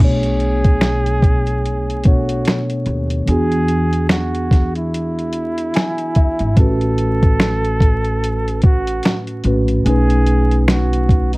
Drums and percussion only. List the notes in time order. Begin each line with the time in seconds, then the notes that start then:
0.23 closed hi-hat
0.40 closed hi-hat
0.64 kick, closed hi-hat
0.81 finger snap, snare, closed hi-hat
1.06 closed hi-hat
1.22 kick, closed hi-hat
1.47 closed hi-hat
1.66 closed hi-hat
1.90 closed hi-hat
2.04 kick, closed hi-hat
2.29 closed hi-hat
2.45 finger snap, snare, closed hi-hat
2.70 closed hi-hat
2.86 closed hi-hat
3.10 closed hi-hat
3.27 closed hi-hat
3.52 closed hi-hat
3.68 closed hi-hat
3.93 closed hi-hat
4.09 finger snap, snare, closed hi-hat
4.35 closed hi-hat
4.51 kick, snare, closed hi-hat
4.75 closed hi-hat
4.94 closed hi-hat
5.19 closed hi-hat
5.33 closed hi-hat
5.58 closed hi-hat
5.74 finger snap, snare, closed hi-hat
5.98 closed hi-hat
6.15 kick, closed hi-hat
6.39 closed hi-hat
6.57 kick, closed hi-hat
6.81 closed hi-hat
6.98 closed hi-hat
7.23 kick, closed hi-hat
7.40 finger snap, snare, closed hi-hat
7.65 closed hi-hat
7.80 kick, closed hi-hat
8.05 closed hi-hat
8.24 closed hi-hat
8.48 closed hi-hat
8.62 kick, closed hi-hat
8.87 closed hi-hat
9.03 finger snap, snare, closed hi-hat
9.27 closed hi-hat
9.44 closed hi-hat
9.68 closed hi-hat
9.86 closed hi-hat
10.10 closed hi-hat
10.26 closed hi-hat
10.51 closed hi-hat
10.68 finger snap, snare, closed hi-hat
10.93 closed hi-hat
11.09 kick, closed hi-hat
11.33 closed hi-hat